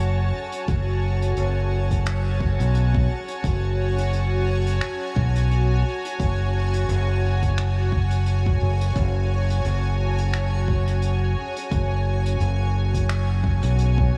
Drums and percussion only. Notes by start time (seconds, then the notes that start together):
0.52 closed hi-hat
0.68 kick, closed hi-hat
1.22 closed hi-hat
1.37 closed hi-hat
1.91 kick, closed hi-hat
2.06 finger snap, closed hi-hat
2.40 kick
2.60 closed hi-hat
2.75 closed hi-hat
2.95 kick
3.28 closed hi-hat
3.44 kick, closed hi-hat
3.98 closed hi-hat
4.13 closed hi-hat
4.67 closed hi-hat
4.81 finger snap, closed hi-hat
5.16 kick
5.36 closed hi-hat
5.51 closed hi-hat
6.05 closed hi-hat
6.20 kick, closed hi-hat
6.73 closed hi-hat
6.89 closed hi-hat
7.43 kick, closed hi-hat
7.58 finger snap, closed hi-hat
7.92 kick
8.11 closed hi-hat
8.26 closed hi-hat
8.46 kick
8.81 closed hi-hat
8.96 kick, closed hi-hat
9.50 closed hi-hat
9.65 closed hi-hat
10.18 closed hi-hat
10.33 finger snap, closed hi-hat
10.68 kick
10.88 closed hi-hat
11.02 closed hi-hat
11.56 closed hi-hat
11.71 kick, closed hi-hat
12.26 closed hi-hat
12.40 closed hi-hat
12.94 kick, closed hi-hat
13.09 finger snap, closed hi-hat
13.44 kick
13.63 closed hi-hat
13.79 closed hi-hat
13.98 kick